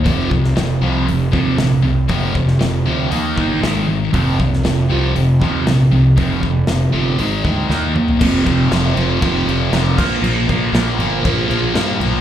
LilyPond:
<<
  \new Staff \with { instrumentName = "Distorted electric guitar" } { \clef bass \time 4/4 \key ees \lydian \tempo 4 = 118 <f, c f>8 <f, c>8 <f, c>8 <f, c f>8 <f, c>8 <f, c f>8 <f, c>8 <f, c>8 | <f, c f>8 <f, c>8 <f, c>8 <f, c f>8 <ees bes ees'>8 <ees bes ees'>8 <aes, ees aes>8 <aes, ees>8 | <f, c f>8 <f, c>8 <f, c>8 <f, c f>8 <f, c>8 <f, c f>8 <f, c>8 <f, c>8 | <f, c f>8 <f, c>8 <f, c>8 <f, c f>8 <aes, ees aes>8 <aes, ees aes>8 <ees bes ees'>8 <ees bes>8 |
\key bes \lydian <f, c f>8 <f, c f>8 <f, c f>8 <f, c f>8 <f, c f>8 <f, c f>8 <f, c f>8 <bes, f bes>8 | <bes, f bes>8 <bes, f bes>8 <bes, f bes>8 <bes, f bes>8 <bes, f bes>8 <bes, f bes>8 <bes, f bes>8 <bes, f bes>8 | }
  \new Staff \with { instrumentName = "Overdriven electric guitar" } { \clef bass \time 4/4 \key ees \lydian <f, c f>8 <f, c>8 <f, c>8 <f, c f>8 <f, c>8 <f, c f>8 <f, c>8 <f, c>8 | <f, c f>8 <f, c>8 <f, c>8 <f, c f>8 <ees bes ees'>8 <ees bes ees'>8 <aes, ees aes>8 <aes, ees>8 | <f, c f>8 <f, c>8 <f, c>8 <f, c f>8 <f, c>8 <f, c f>8 <f, c>8 <f, c>8 | <f, c f>8 <f, c>8 <f, c>8 <f, c f>8 <aes, ees aes>8 <aes, ees aes>8 <ees bes ees'>8 <ees bes>8 |
\key bes \lydian <f, c f>8 <f, c f>8 <f, c f>8 <f, c f>8 <f, c f>8 <f, c f>8 <f, c f>8 <bes, f bes>8 | <bes, f bes>8 <bes, f bes>8 <bes, f bes>8 <bes, f bes>8 <bes, f bes>8 <bes, f bes>8 <bes, f bes>8 <bes, f bes>8 | }
  \new Staff \with { instrumentName = "Fingered electric bass" } { \clef bass \time 4/4 \key ees \lydian f,,8 c,8 f,,8 c,8 f,,8 ees,8 bes,,8 c,8 | f,,8 f,,8 f,,8 d,8 ees,8 g,,8 aes,,4 | f,,8 c,8 f,,8 c,8 f,,8 ees,8 bes,,8 c,8 | f,,8 f,,8 f,,8 g,,8 aes,,8 d,8 ees,4 |
\key bes \lydian f,,8 f,,8 f,,8 f,,8 f,,8 f,,8 f,,8 bes,,8 | bes,,8 bes,,8 bes,,8 g,,8 bes,,8 bes,,8 g,8 b,,8 | }
  \new DrumStaff \with { instrumentName = "Drums" } \drummode { \time 4/4 <hho bd>8 bd16 sn16 <hho sn>4 hho8 bd8 <hho sn>4 | <hho bd>8 bd16 sn16 <hho sn>4 hho8 bd8 <hho sn>4 | <hho bd>8 bd16 sn16 <hho sn>4 hho8 bd8 <hho sn>4 | <hho bd>8 bd8 <hho sn>4 hho8 bd8 sn8 toml16 tomfh16 |
<cymc bd>8 <cymc bd>8 <cymc sn>8 cymc8 <cymc bd>8 cymc8 <cymc sn>8 <cymc bd>8 | cymc8 <cymc bd>8 <cymc sn>8 cymc8 <cymc bd>8 cymc8 <cymc sn>8 cymc8 | }
>>